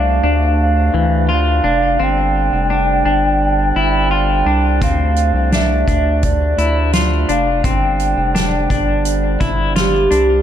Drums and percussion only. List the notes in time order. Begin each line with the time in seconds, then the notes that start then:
4.82 kick, closed hi-hat
5.16 closed hi-hat
5.52 snare, closed hi-hat
5.88 kick, closed hi-hat
6.23 kick, closed hi-hat
6.58 closed hi-hat
6.93 snare, closed hi-hat
7.29 closed hi-hat
7.64 kick, closed hi-hat
8.00 closed hi-hat
8.36 snare, closed hi-hat
8.70 kick, closed hi-hat
9.05 closed hi-hat
9.41 kick, closed hi-hat
9.76 snare, closed hi-hat
10.11 closed hi-hat